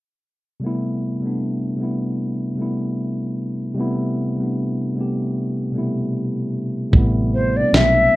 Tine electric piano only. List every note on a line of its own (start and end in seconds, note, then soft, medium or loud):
0.60 1.08 C3 medium
0.60 1.09 G3 medium
0.60 1.10 A3 medium
0.65 1.10 B3 medium
0.65 1.11 E4 loud
1.21 1.67 C3 medium
1.21 1.68 G3 medium
1.21 1.69 A3 medium
1.26 1.70 B3 medium
1.26 1.70 D4 medium
1.76 2.43 C3 medium
1.76 2.43 G3 medium
1.76 2.44 A3 medium
1.81 2.45 B3 medium
1.81 2.46 E4 medium
2.55 3.52 C3 medium
2.55 3.52 G3 medium
2.55 3.53 A3 medium
2.60 3.54 B3 medium
2.60 3.55 E4 medium
3.74 4.23 C3 loud
3.74 4.24 G3 medium
3.74 4.25 A3 medium
3.79 4.25 B3 medium
3.79 4.26 E4 loud
4.37 4.83 C3 medium
4.37 4.84 G3 medium
4.37 4.85 A3 medium
4.42 4.86 B3 medium
4.42 4.87 D4 medium
4.94 5.59 C3 medium
4.94 5.60 G3 medium
4.94 5.61 A3 medium
4.99 5.62 B3 medium
4.99 5.63 G4 medium
5.72 5.81 B2 medium
5.72 6.68 G3 medium
5.72 6.69 A3 medium
5.77 6.71 C3 medium
5.77 6.70 B3 medium
5.77 6.71 E4 medium
6.91 7.39 C3 medium
6.91 7.40 G3 medium
6.91 7.41 A3 medium
6.97 7.42 B3 loud
6.97 7.43 E4 loud
7.53 7.60 B2 medium
7.53 8.16 G3 medium
7.53 8.16 A3 medium
7.58 8.16 B3 medium
7.58 8.16 C4 medium
7.58 8.16 D4 medium